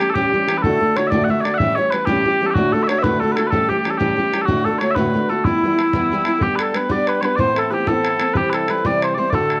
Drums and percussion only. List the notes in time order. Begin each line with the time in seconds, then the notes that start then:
0.15 bodhran
0.24 bodhran
0.33 bodhran
0.49 bodhran
0.64 bodhran
0.82 bodhran
0.97 bodhran
1.12 bodhran
1.21 bodhran
1.30 bodhran
1.45 bodhran
1.60 bodhran
1.92 bodhran
2.07 bodhran
2.16 bodhran
2.25 bodhran
2.55 bodhran
2.73 bodhran
2.89 bodhran
3.04 bodhran
3.13 bodhran
3.22 bodhran
3.37 bodhran
3.53 bodhran
3.70 bodhran
3.85 bodhran
4.01 bodhran
4.10 bodhran
4.18 bodhran
4.34 bodhran
4.48 bodhran
4.66 bodhran
4.81 bodhran
4.96 bodhran
5.06 bodhran
5.15 bodhran
5.45 bodhran
5.63 bodhran
5.79 bodhran
5.93 bodhran
6.02 bodhran
6.10 bodhran
6.25 bodhran
6.41 bodhran
6.59 bodhran
6.74 bodhran
6.90 bodhran
7.07 bodhran
7.23 bodhran
7.39 bodhran
7.56 bodhran
7.87 bodhran
8.05 bodhran
8.20 bodhran
8.35 bodhran
8.53 bodhran
8.68 bodhran
8.85 bodhran
9.02 bodhran
9.33 bodhran
9.50 bodhran